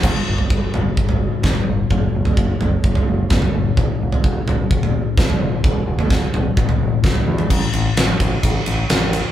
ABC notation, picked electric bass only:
X:1
M:4/4
L:1/8
Q:1/4=129
K:Emix
V:1 name="Picked electric bass" clef=bass
=G,,, G,,, G,,, G,,, G,,,2 G,,, G,,, | F,,, F,,, F,,, F,,, F,,, F,,, F,,, F,,, | E,,, E,,, E,,, E,,, E,,,2 E,,, E,,, | E,,, E,,, E,,, E,,, E,,, E,,, E,,, E,, |
A,,, A,,, A,,, A,,, A,,, A,,, A,,,2 |]